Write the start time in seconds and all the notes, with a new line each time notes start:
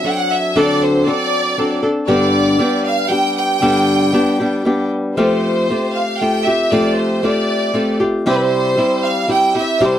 0.04 F#3 C4 D4 A4 F#5
0.11 G5
0.19 F#5
0.33 E5
0.56 D3 F#3 C4 D4 A4 D5
0.83 C5
1.06 F#3 C4 D4 A4 D5
1.58 F#3 C4 D4 A4
1.83 C4 D4 A4
2.08 G2 D3 G3 B3 D4 G4 D5
2.58 G3 B3 D4 G4
2.86 F5
3.10 G3 B3 D4 G4 G5
3.37 G5
3.61 G2 D3 G3 B3 D4 G4
4.13 G3 B3 D4 G4
4.40 G3 B3 D4 G4
4.65 G3 B3 D4 G4
5.17 F3 A3 C4 F4 G4 C5
5.70 A3 C4 F4 G4
5.95 F5
6.19 A3 C4 F4 G4 G5
6.44 F4 G4 E5
6.48 C4
6.71 F3 A3 C4 F4 G4 D5
6.97 C5
7.23 A3 C4 F4 G4 D5
7.74 A3 C4 F4 G4
8.00 C4 F4 G4
8.26 C3 G3 C4 E4 G4 C5
8.34 B4
8.41 C5
8.77 G3 C4 E4 G4
9.06 F5
9.28 G3 C4 E4 G4 G5
9.55 C4 E4 G4 E5
9.80 C3 G3 C4 E4 G4 C5